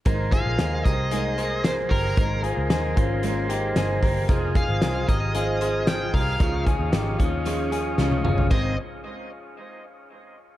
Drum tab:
CC |----------------|----------------|----------------|----------------|
HH |x-x-x-x-x-x-x-o-|x-x-x-x-x-x-x-o-|x-x-x-x-x-x-x-o-|x-x-x-x-x-x-----|
SD |----o-------o---|----o-------o---|----o-------o---|----o-------o---|
T1 |----------------|----------------|----------------|-------------o--|
T2 |----------------|----------------|----------------|--------------o-|
FT |----------------|----------------|----------------|---------------o|
BD |o-o---o-------o-|o-----o-------o-|o-o---o-------o-|o-o---o---------|

CC |x---------------|
HH |----------------|
SD |----------------|
T1 |----------------|
T2 |----------------|
FT |----------------|
BD |o---------------|